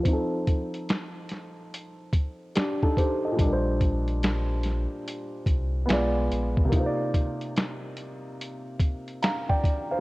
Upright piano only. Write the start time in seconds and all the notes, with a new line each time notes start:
0.00 F3 C4
0.08 D#4
0.13 A4
2.56 D4 G4
2.83 D#4 A4
2.98 G4 C5
3.25 A4 D#5
3.32 A#2
3.36 G3
3.41 D4
3.46 A#4
3.53 C5
5.86 G#3 B3
5.90 F4 D5
6.65 C3 A#3
6.72 D#4 F4
6.80 C5
6.86 D5
9.22 F5 A#5
9.49 D5 G5
9.91 C5 F5